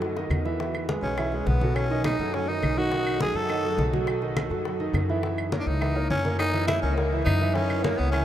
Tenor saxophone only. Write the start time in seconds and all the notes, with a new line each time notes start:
1.03 C#4
1.47 B3
1.75 C#4
2.05 D#4
2.34 C#4
2.48 D#4
2.78 F#4
3.22 G#4
3.36 A4
5.60 D4
5.67 D#4
6.10 C#4
6.39 D#4
6.67 E4
6.82 C#4
6.96 A#3
7.25 D#4
7.54 C#4
7.83 A#3
7.98 B3
8.12 C#4